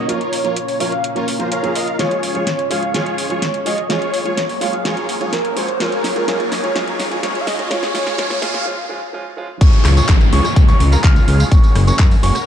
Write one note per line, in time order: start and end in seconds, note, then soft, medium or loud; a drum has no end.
0.00 1.95 C#5 medium
0.00 0.10 D#5 medium
0.08 0.18 F3 medium
0.08 0.18 A#3 medium
0.08 1.97 A#3 medium
0.08 1.97 C#4 medium
0.08 0.18 C#4 medium
0.08 0.42 F4 medium
0.08 3.86 F4 medium
0.08 0.18 F4 loud
0.08 0.42 A#4 medium
0.08 0.42 C#5 medium
0.08 0.56 C#5 loud
0.08 closed hi-hat medium
0.21 closed hi-hat soft
0.33 open hi-hat loud
0.44 0.53 F3 medium
0.44 0.54 A#3 medium
0.44 0.54 C#4 medium
0.44 0.57 F4 medium
0.44 0.54 F4 medium
0.44 0.57 A#4 medium
0.44 0.57 C#5 loud
0.44 closed hi-hat soft
0.56 0.82 C#5 loud
0.56 closed hi-hat medium
0.68 open hi-hat medium
0.80 0.89 F3 medium
0.80 0.89 A#3 medium
0.80 0.90 C#4 medium
0.80 0.93 F4 medium
0.80 0.90 F4 medium
0.80 0.93 A#4 medium
0.80 0.93 C#5 loud
0.80 1.04 F5 loud
0.80 open hi-hat loud
0.92 closed hi-hat soft
1.04 closed hi-hat medium
1.16 1.21 F3 medium
1.16 1.22 A#3 medium
1.16 1.22 C#4 medium
1.16 1.29 F4 medium
1.16 1.22 F4 medium
1.16 1.29 A#4 medium
1.16 1.29 C#5 loud
1.16 closed hi-hat soft
1.28 open hi-hat loud
1.39 1.49 F3 medium
1.39 1.49 A#3 medium
1.39 1.49 C#4 medium
1.39 1.49 F4 medium
1.39 1.49 A#4 medium
1.39 1.49 C5 medium
1.39 closed hi-hat soft
1.52 1.96 F4 medium
1.52 1.96 A#4 medium
1.52 1.62 C#5 medium
1.52 1.96 F5 loud
1.52 closed hi-hat medium
1.63 1.69 F3 medium
1.63 1.69 A#3 medium
1.63 1.69 C#4 medium
1.63 1.70 G#4 loud
1.63 closed hi-hat soft
1.75 1.86 D#5 medium
1.75 open hi-hat loud
1.88 closed hi-hat soft
1.99 2.08 F3 medium
1.99 3.88 G#3 medium
1.99 2.08 G#3 medium
1.99 3.88 C#4 medium
1.99 2.09 C#4 medium
1.99 2.32 F4 medium
1.99 2.09 F4 medium
1.99 2.32 G#4 medium
1.99 3.88 C#5 medium
1.99 2.32 C#5 medium
1.99 2.44 C#5 loud
1.99 snare soft
1.99 closed hi-hat medium
1.99 riser medium
2.11 closed hi-hat soft
2.23 open hi-hat loud
2.34 2.44 F3 medium
2.34 2.44 G#3 medium
2.34 2.44 C#4 medium
2.34 2.48 F4 medium
2.34 2.44 F4 medium
2.34 2.48 G#4 medium
2.34 2.48 C#5 loud
2.34 closed hi-hat soft
2.47 2.72 C#5 loud
2.47 snare soft
2.47 closed hi-hat medium
2.59 closed hi-hat soft
2.70 2.80 F3 medium
2.70 2.80 G#3 medium
2.70 2.80 C#4 medium
2.70 2.84 F4 medium
2.70 2.80 F4 medium
2.70 2.84 G#4 medium
2.70 2.84 C#5 medium
2.70 2.94 F5 loud
2.70 open hi-hat loud
2.83 closed hi-hat soft
2.94 3.03 F3 medium
2.94 3.04 G#3 medium
2.94 3.04 C#4 medium
2.94 3.27 F4 medium
2.94 3.04 F4 medium
2.94 3.27 G#4 medium
2.94 3.27 C#5 medium
2.94 snare medium
2.94 closed hi-hat medium
3.06 closed hi-hat soft
3.18 open hi-hat loud
3.30 3.39 F3 medium
3.30 3.39 G#3 medium
3.30 3.40 C#4 medium
3.30 3.43 F4 medium
3.30 3.40 F4 medium
3.30 3.43 G#4 medium
3.30 3.43 C#5 loud
3.30 closed hi-hat soft
3.42 3.68 C#5 medium
3.42 snare medium
3.42 closed hi-hat medium
3.54 closed hi-hat soft
3.65 3.75 F3 medium
3.65 3.75 G#3 medium
3.65 3.75 C#4 medium
3.65 3.79 F4 medium
3.65 3.76 F4 medium
3.65 3.79 G#4 medium
3.65 3.79 C#5 loud
3.65 3.91 D#5 medium
3.65 open hi-hat loud
3.78 closed hi-hat soft
3.89 3.99 F3 medium
3.89 7.67 F#3 medium
3.89 3.99 G#3 medium
3.89 7.67 A#3 medium
3.89 3.99 C#4 medium
3.89 4.23 F4 medium
3.89 3.99 F4 loud
3.89 5.78 G#4 medium
3.89 4.23 G#4 medium
3.89 8.62 C#5 loud
3.89 4.23 C#5 medium
3.89 4.37 C#5 loud
3.89 snare medium
3.89 closed hi-hat medium
4.02 closed hi-hat soft
4.14 open hi-hat loud
4.25 4.34 F3 medium
4.25 4.35 G#3 medium
4.25 4.35 C#4 medium
4.25 4.38 F4 medium
4.25 4.35 F4 medium
4.25 4.38 G#4 medium
4.25 4.38 C#5 loud
4.25 closed hi-hat soft
4.37 4.60 C#5 loud
4.37 snare medium
4.37 closed hi-hat medium
4.49 open hi-hat medium
4.61 4.70 F3 medium
4.61 4.70 G#3 medium
4.61 4.71 C#4 medium
4.61 4.74 F4 medium
4.61 4.71 F4 medium
4.61 4.74 G#4 medium
4.61 4.74 C#5 medium
4.61 4.83 F5 loud
4.61 open hi-hat loud
4.73 closed hi-hat soft
4.85 4.94 F3 medium
4.85 4.94 G#3 medium
4.85 4.94 C#4 medium
4.85 5.18 F4 medium
4.85 4.95 F4 medium
4.85 5.18 G#4 medium
4.85 5.18 C#5 medium
4.85 snare medium
4.85 closed hi-hat medium
4.97 closed hi-hat soft
5.09 open hi-hat loud
5.20 5.30 F3 medium
5.20 5.30 G#3 medium
5.20 5.30 C#4 medium
5.20 5.34 F4 loud
5.20 5.30 F4 medium
5.20 5.34 G#4 medium
5.20 5.34 C#5 loud
5.20 closed hi-hat soft
5.33 5.58 A#4 medium
5.33 snare medium
5.33 closed hi-hat medium
5.45 closed hi-hat soft
5.56 5.65 F3 medium
5.56 5.66 G#3 medium
5.56 5.66 C#4 medium
5.56 5.69 F4 medium
5.56 5.66 F4 medium
5.56 5.69 G#4 medium
5.56 5.82 C5 loud
5.56 5.69 C#5 loud
5.56 open hi-hat loud
5.68 closed hi-hat soft
5.80 5.89 F3 medium
5.80 5.89 G#3 medium
5.80 5.90 C#4 medium
5.80 7.69 D#4 medium
5.80 6.13 F4 medium
5.80 5.90 F4 loud
5.80 6.13 G#4 medium
5.80 6.27 A#4 loud
5.80 6.13 C#5 medium
5.80 snare medium
5.80 closed hi-hat loud
5.92 closed hi-hat soft
6.04 snare medium
6.04 open hi-hat medium
6.15 6.25 F3 medium
6.15 6.25 G#3 medium
6.15 6.25 C#4 medium
6.15 6.26 F4 loud
6.15 6.25 F4 medium
6.15 6.26 G#4 medium
6.15 6.26 C#5 loud
6.15 closed hi-hat soft
6.27 6.37 F3 medium
6.27 6.37 G#3 medium
6.27 6.37 C#4 medium
6.27 6.61 F4 medium
6.27 6.37 F4 loud
6.27 6.61 G#4 medium
6.27 6.53 A#4 loud
6.27 6.61 C#5 medium
6.27 snare medium
6.27 closed hi-hat loud
6.40 closed hi-hat soft
6.52 6.76 C#5 loud
6.52 snare medium
6.52 open hi-hat loud
6.63 6.73 F3 medium
6.63 6.73 G#3 medium
6.63 6.73 C#4 medium
6.63 6.74 F4 medium
6.63 6.73 F4 medium
6.63 6.74 G#4 medium
6.63 6.74 C#5 loud
6.63 closed hi-hat soft
6.75 6.84 F3 medium
6.75 6.85 G#3 medium
6.75 6.85 C#4 medium
6.75 7.08 F4 medium
6.75 6.85 F4 loud
6.75 7.08 G#4 medium
6.75 7.08 C#5 medium
6.75 snare medium
6.75 closed hi-hat loud
6.88 closed hi-hat soft
6.99 snare medium
6.99 open hi-hat loud
7.11 7.20 F3 medium
7.11 7.20 G#3 medium
7.11 7.20 C#4 medium
7.11 7.21 F4 loud
7.11 7.21 F4 medium
7.11 7.21 G#4 medium
7.11 7.21 C#5 loud
7.11 closed hi-hat soft
7.23 7.32 F3 medium
7.23 7.32 G#3 medium
7.23 7.32 C#4 medium
7.23 7.56 F4 medium
7.23 7.33 F4 loud
7.23 7.56 G#4 medium
7.23 7.56 C#5 medium
7.23 7.42 C#5 medium
7.23 snare medium
7.23 closed hi-hat medium
7.35 closed hi-hat soft
7.41 7.48 F5 medium
7.47 7.72 D#5 medium
7.47 snare medium
7.47 open hi-hat loud
7.58 7.68 F3 medium
7.58 7.68 G#3 medium
7.58 7.68 C#4 medium
7.58 7.69 F4 loud
7.58 7.68 F4 medium
7.58 7.69 G#4 medium
7.58 7.69 C#5 loud
7.58 closed hi-hat soft
7.70 7.80 F3 medium
7.70 7.80 G#3 medium
7.70 8.65 A#3 medium
7.70 8.65 C#4 medium
7.70 7.80 C#4 medium
7.70 8.65 F4 medium
7.70 7.93 F4 medium
7.70 7.80 F4 loud
7.70 7.93 G#4 medium
7.70 8.18 C#5 loud
7.70 7.93 C#5 medium
7.70 snare medium
7.70 closed hi-hat loud
7.83 snare medium
7.83 closed hi-hat soft
7.94 8.03 F3 medium
7.94 8.04 G#3 medium
7.94 8.04 C#4 medium
7.94 8.16 F4 medium
7.94 8.04 F4 loud
7.94 8.16 G#4 medium
7.94 8.16 C#5 medium
7.94 snare medium
7.94 open hi-hat loud
8.07 snare medium
8.07 closed hi-hat soft
8.18 8.27 F3 loud
8.18 8.27 G#3 medium
8.18 8.28 C#4 medium
8.18 8.40 F4 medium
8.18 8.28 F4 loud
8.18 8.40 G#4 medium
8.18 8.43 C#5 loud
8.18 8.40 C#5 medium
8.18 snare loud
8.18 closed hi-hat loud
8.30 snare medium
8.30 open hi-hat medium
8.42 8.51 F3 medium
8.42 8.51 G#3 medium
8.42 8.51 C#4 medium
8.42 8.64 F4 medium
8.42 8.52 F4 loud
8.42 8.64 G#4 medium
8.42 8.64 C#5 medium
8.42 8.66 F5 loud
8.42 snare loud
8.42 open hi-hat loud
8.54 snare medium
8.54 closed hi-hat soft
8.65 8.75 F3 medium
8.65 8.75 G#3 medium
8.65 8.75 C#4 medium
8.65 8.75 F4 loud
8.89 8.99 F3 loud
8.89 8.99 G#3 medium
8.89 8.99 C#4 medium
8.89 8.99 F4 loud
9.13 9.22 F3 medium
9.13 9.23 G#3 medium
9.13 9.23 C#4 medium
9.13 9.23 F4 loud
9.37 9.46 F3 loud
9.37 9.47 G#3 medium
9.37 9.47 C#4 medium
9.37 9.47 F4 loud
9.61 9.69 C#2 loud
9.61 12.46 G#3 medium
9.61 12.46 C#4 medium
9.61 9.94 F4 medium
9.61 11.50 F4 medium
9.61 9.94 G#4 medium
9.61 9.94 C#5 medium
9.61 11.50 C#5 medium
9.61 9.94 C#6 medium
9.61 kick loud
9.61 closed hi-hat loud
9.61 crash loud
9.61 tambourine medium
9.61 downlifter medium
9.73 closed hi-hat soft
9.73 tambourine soft
9.85 10.02 C#2 medium
9.85 cross-stick medium
9.85 clap medium
9.85 open hi-hat loud
9.97 10.10 F4 loud
9.97 10.10 G#4 medium
9.97 10.10 C#5 loud
9.97 10.10 C#6 loud
9.97 closed hi-hat soft
9.97 tambourine medium
10.09 10.25 G#1 medium
10.09 kick loud
10.09 clap loud
10.09 closed hi-hat loud
10.09 tambourine medium
10.21 closed hi-hat soft
10.21 tambourine soft
10.32 10.41 C#2 loud
10.32 10.45 F4 loud
10.32 10.45 G#4 medium
10.32 10.45 C#5 loud
10.32 10.46 C#6 loud
10.32 open hi-hat loud
10.45 cross-stick medium
10.45 closed hi-hat soft
10.45 tambourine medium
10.56 10.73 C#2 medium
10.56 kick loud
10.56 closed hi-hat medium
10.56 tambourine medium
10.68 10.81 F4 medium
10.68 10.81 G#4 medium
10.68 10.81 C#5 loud
10.68 10.81 C#6 loud
10.68 closed hi-hat soft
10.68 tambourine soft
10.80 10.97 C#2 medium
10.80 open hi-hat loud
10.92 11.01 F4 medium
10.92 11.01 G#4 medium
10.92 11.01 A#4 medium
10.92 11.01 A#5 medium
10.92 closed hi-hat soft
10.92 tambourine medium
11.04 11.21 C#2 medium
11.04 11.49 G#4 medium
11.04 11.49 F6 loud
11.04 kick loud
11.04 clap loud
11.04 closed hi-hat medium
11.04 tambourine medium
11.16 closed hi-hat soft
11.16 tambourine soft
11.28 11.44 C#2 medium
11.28 open hi-hat loud
11.40 closed hi-hat soft
11.40 tambourine medium
11.52 11.60 F#1 loud
11.52 11.85 A#3 medium
11.52 11.85 C#4 medium
11.52 12.46 F#4 medium
11.52 11.85 F#4 medium
11.52 11.85 G#4 medium
11.52 12.46 A#4 medium
11.52 11.85 C#5 medium
11.52 11.85 C#6 medium
11.52 kick loud
11.52 closed hi-hat medium
11.52 tambourine medium
11.64 closed hi-hat soft
11.64 tambourine soft
11.75 11.92 F#1 medium
11.75 cross-stick medium
11.75 open hi-hat loud
11.87 12.00 A#3 loud
11.87 12.00 C#4 medium
11.87 12.00 F#4 medium
11.87 12.00 G#4 medium
11.87 12.00 C#5 loud
11.87 12.00 C#6 loud
11.87 closed hi-hat soft
11.87 tambourine medium
11.99 12.16 F#2 loud
11.99 kick loud
11.99 clap loud
11.99 closed hi-hat medium
11.99 tambourine medium
12.11 open hi-hat medium
12.11 tambourine soft
12.23 12.31 F#1 loud
12.23 12.36 A#3 loud
12.23 12.36 C#4 medium
12.23 12.36 F#4 medium
12.23 12.36 G#4 medium
12.23 12.36 C#5 loud
12.23 12.36 C#6 loud
12.23 open hi-hat loud
12.35 cross-stick medium
12.35 closed hi-hat soft
12.35 tambourine medium